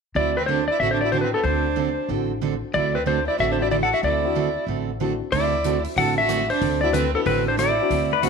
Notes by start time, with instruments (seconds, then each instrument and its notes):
0.15 upright bass D2, steel-string acoustic guitar D3 A3 C4 F#4 A4, fiddle E4, electric slide guitar D5
0.37 fiddle C4, electric slide guitar B4
0.46 steel-string acoustic guitar D3 A3 C4 F#4 A4, fiddle D4, electric slide guitar C5
0.68 fiddle E4, electric slide guitar D5
0.80 upright bass A1, steel-string acoustic guitar D3 A3 C4 F#4 A4, fiddle F#4, electric slide guitar E5
0.91 fiddle D4, electric slide guitar C5
1.01 upright piano C4 D4 E4 F#4, fiddle E4, electric slide guitar D5
1.12 steel-string acoustic guitar D3 A3 C4 F#4 A4, fiddle D4, electric slide guitar C5
1.21 fiddle C4, electric slide guitar B4
1.34 fiddle B3, electric slide guitar A4
1.43 upright bass D2, steel-string acoustic guitar D3 A3 C4 F#4 A4, fiddle D4, electric slide guitar C5
1.76 steel-string acoustic guitar D3 A3 C4 F#4 A4
2.09 upright bass A1, steel-string acoustic guitar D3 A3 C4 F#4 A4, upright piano C4 D4 E4 F#4
2.41 steel-string acoustic guitar D3 A3 C4 F#4 A4
2.73 upright bass D2, steel-string acoustic guitar D3 A3 C4 F#4 A4, fiddle E4, electric slide guitar D5
2.94 fiddle C4, electric slide guitar B4
3.06 steel-string acoustic guitar D3 A3 C4 F#4 A4, fiddle D4, electric slide guitar C5
3.27 fiddle E4, electric slide guitar D5
3.38 upright bass A1, steel-string acoustic guitar D3 A3 C4 F#4 A4, fiddle F#4, electric slide guitar E5
3.50 fiddle D4, electric slide guitar C5
3.59 upright piano C4 D4 E4 F#4, fiddle E4, electric slide guitar D5
3.71 steel-string acoustic guitar D3 A3 C4 F#4 A4, fiddle E4, electric slide guitar D5
3.83 fiddle A4, electric slide guitar F#5
3.93 fiddle F#4, electric slide guitar E5
4.03 upright bass D2, steel-string acoustic guitar D3 A3 C4 F#4 A4, fiddle E4, electric slide guitar D5
4.24 upright piano C4 D4 E4 F#4
4.35 steel-string acoustic guitar D3 A3 C4 F#4 A4
4.67 upright bass A1, steel-string acoustic guitar D3 A3 C4 F#4 A4
5.00 steel-string acoustic guitar D3 A3 C4 F#4 A4, upright piano C4 D4 E4 F#4
5.32 upright bass D2, steel-string acoustic guitar D3 A3 C4 F#4 A4, fiddle E4, electric slide guitar D5, kick, open hi-hat
5.64 steel-string acoustic guitar D3 A3 C4 F#4 A4, closed hi-hat
5.84 open hi-hat
5.96 upright bass A1, steel-string acoustic guitar D3 A3 C4 F#4 A4, upright piano C4 D4 E4 F#4, fiddle A4, electric slide guitar F#5, kick, open hi-hat
6.18 fiddle F#4, electric slide guitar E5
6.29 steel-string acoustic guitar D3 A3 C4 F#4 A4, cross-stick, closed hi-hat
6.50 fiddle D4, electric slide guitar C5, open hi-hat
6.61 upright bass D2, steel-string acoustic guitar D3 A3 C4 F#4 A4, kick, open hi-hat
6.81 upright piano C4 D4 E4 F#4, fiddle E4, electric slide guitar D5
6.93 steel-string acoustic guitar D3 A3 C4 F#4 A4, fiddle C4, electric slide guitar B4, closed hi-hat
7.14 fiddle B3, upright piano C4 D4 E4 F#4, electric slide guitar A4
7.25 upright bass A1, steel-string acoustic guitar D3 A3 C4 F#4 A4, fiddle C4, electric slide guitar B4, kick, open hi-hat
7.48 fiddle D4, electric slide guitar C5
7.57 steel-string acoustic guitar D3 A3 C4 F#4 A4, fiddle E4, electric slide guitar D5, cross-stick, closed hi-hat
7.80 upright piano C4 D4 E4 F#4
7.90 upright bass D2, steel-string acoustic guitar D3 A3 C4 F#4 A4, kick, open hi-hat
8.13 pedal steel guitar B4
8.22 steel-string acoustic guitar D3 A3 C4 F#4 A4, upright piano C4 D4 E4 F#4, closed hi-hat